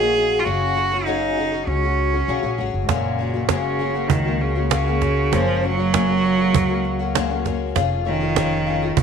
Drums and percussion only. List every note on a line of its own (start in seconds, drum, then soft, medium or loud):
2.89 cajon bass medium
2.89 cajon slap soft
3.19 cajon slap soft
3.49 cajon bass medium
3.49 cajon slap medium
3.80 cajon slap soft
4.10 cajon bass medium
4.41 cajon slap soft
4.71 cajon slap medium
5.02 cajon bass medium
5.02 cajon slap soft
5.33 cajon bass medium
5.33 cajon slap soft
5.63 cajon slap soft
5.94 cajon bass medium
5.94 cajon slap medium
6.25 cajon slap soft
6.55 cajon bass medium
6.85 cajon slap soft
7.15 cajon slap medium
7.46 cajon bass medium
7.46 cajon slap soft
7.76 cajon bass medium
7.76 cajon slap soft
8.07 cajon slap soft
8.36 cajon bass medium
8.36 cajon slap medium
8.67 cajon slap soft
8.97 cajon bass medium